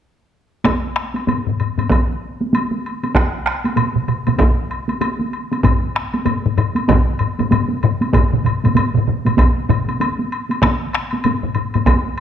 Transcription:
0.64 taiko rim medium
0.64 taiko medium
0.64 taiko high medium
0.64 high woodblock soft
0.96 taiko rim medium
0.96 high woodblock soft
1.14 taiko high soft
1.14 high woodblock soft
1.27 taiko low-mid medium
1.27 taiko high medium
1.27 high woodblock soft
1.47 taiko low-mid medium
1.60 taiko low-mid medium
1.60 high woodblock soft
1.78 taiko low-mid medium
1.78 taiko high soft
1.78 high woodblock soft
1.90 taiko medium
1.90 taiko high medium
1.90 high woodblock soft
2.41 taiko high soft
2.53 taiko high medium
2.53 high woodblock soft
2.72 taiko high soft
2.86 high woodblock soft
3.03 taiko high soft
3.03 high woodblock soft
3.15 taiko rim medium
3.15 taiko medium
3.15 taiko high medium
3.15 high woodblock soft
3.46 taiko rim medium
3.46 high woodblock soft
3.64 taiko high soft
3.64 high woodblock soft
3.76 taiko mid medium
3.76 taiko high medium
3.76 high woodblock soft
3.96 taiko mid medium
4.08 taiko mid medium
4.08 high woodblock soft
4.27 taiko mid medium
4.27 taiko high soft
4.27 high woodblock soft
4.38 taiko medium
4.38 taiko high medium
4.38 high woodblock soft
4.71 high woodblock soft
4.89 taiko high soft
4.89 high woodblock soft
5.01 taiko high medium
5.01 high woodblock soft
5.19 taiko high soft
5.33 high woodblock soft
5.52 taiko high medium
5.52 high woodblock soft
5.63 taiko medium
5.63 taiko low-mid medium
5.63 taiko high medium
5.63 high woodblock soft
5.96 taiko rim medium
5.96 high woodblock soft
6.14 taiko high medium
6.14 high woodblock soft
6.25 taiko low-mid medium
6.25 taiko high medium
6.25 high woodblock soft
6.46 taiko low-mid medium
6.58 taiko low-mid medium
6.58 high woodblock soft
6.75 taiko high soft
6.75 high woodblock soft
6.88 taiko medium
6.88 taiko low-mid medium
6.88 taiko high medium
6.88 high woodblock soft
7.19 taiko low-mid medium
7.19 high woodblock soft
7.39 taiko low-mid medium
7.39 taiko high medium
7.39 high woodblock soft
7.51 taiko low-mid medium
7.51 taiko high medium
7.51 high woodblock soft
7.69 taiko high soft
7.83 taiko low-mid medium
7.83 high woodblock soft
8.01 taiko high medium
8.01 high woodblock soft
8.13 taiko medium
8.13 taiko low-mid medium
8.13 taiko mid medium
8.13 taiko high medium
8.13 high woodblock soft
8.33 taiko low-mid medium
8.33 taiko mid medium
8.44 taiko low-mid medium
8.44 taiko mid medium
8.44 high woodblock soft
8.64 taiko low-mid medium
8.64 taiko mid medium
8.64 taiko high soft
8.64 high woodblock soft
8.75 taiko low-mid medium
8.75 taiko mid medium
8.75 taiko high medium
8.75 high woodblock soft
8.94 taiko low-mid medium
8.94 taiko mid medium
9.07 taiko low-mid medium
9.07 taiko mid medium
9.25 taiko low-mid medium
9.25 taiko mid medium
9.25 taiko high soft
9.25 high woodblock soft
9.38 taiko medium
9.38 taiko high medium
9.38 high woodblock soft
9.69 taiko low-mid medium
9.69 taiko mid medium
9.69 high woodblock soft
9.88 taiko high soft
9.88 high woodblock soft
10.00 taiko high medium
10.00 high woodblock medium
10.19 taiko high soft
10.32 high woodblock soft
10.50 taiko high soft
10.50 high woodblock soft
10.62 taiko rim medium
10.62 taiko medium
10.62 taiko high medium
10.62 high woodblock medium
10.93 taiko rim medium
10.93 high woodblock soft
11.11 taiko high soft
11.11 high woodblock soft
11.24 taiko low-mid medium
11.24 taiko high medium
11.24 high woodblock soft
11.44 taiko low-mid medium
11.55 taiko low-mid medium
11.55 high woodblock soft
11.74 taiko low-mid medium
11.74 taiko high soft
11.74 high woodblock soft
11.86 taiko medium
11.86 taiko high medium
11.86 high woodblock medium

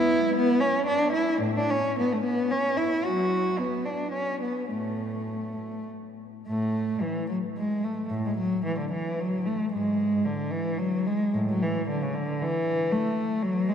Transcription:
0.00 0.31 B3 medium
0.00 0.35 E4 medium
0.36 0.60 B3 medium
0.60 0.86 C#4 medium
0.87 1.12 D4 medium
1.13 1.40 E4 medium
1.41 1.55 A2 medium
1.57 1.70 D4 medium
1.70 1.97 C#4 medium
1.99 2.11 B3 medium
2.13 2.25 A3 medium
2.24 2.50 B3 medium
2.51 2.78 C#4 medium
2.77 3.04 E4 medium
3.05 3.56 F#3 medium
3.05 3.59 F#4 medium
3.59 3.87 B3 medium
3.85 4.14 D4 medium
4.13 4.42 C#4 medium
4.42 4.71 B3 soft
4.72 5.55 A2 soft
4.72 5.86 A3 soft
6.47 6.98 A2 soft
6.47 6.99 A3 medium
7.01 7.29 E3 medium
7.28 7.36 F#3 medium
7.57 7.83 G#3 medium
7.84 8.11 A3 medium
8.10 8.23 A2 medium
8.25 8.38 G#3 medium
8.38 8.64 F#3 medium
8.65 8.78 E3 medium
8.79 8.92 D3 medium
8.92 9.19 E3 medium
9.20 9.46 F#3 medium
9.46 9.72 A3 medium
9.72 10.22 G#2 soft
9.72 10.25 G#3 medium
10.25 10.52 D3 medium
10.51 10.78 E3 medium
10.78 11.05 F#3 medium
11.06 11.34 G#3 medium
11.34 11.48 A2 medium
11.49 11.62 F#3 medium
11.62 11.89 E3 medium
11.88 12.01 D3 medium
12.02 12.15 C#3 medium
12.15 12.41 D3 medium
12.41 12.92 E3 medium
12.92 13.43 A3 medium
13.42 13.69 F#3 medium
13.69 13.74 G#3 medium

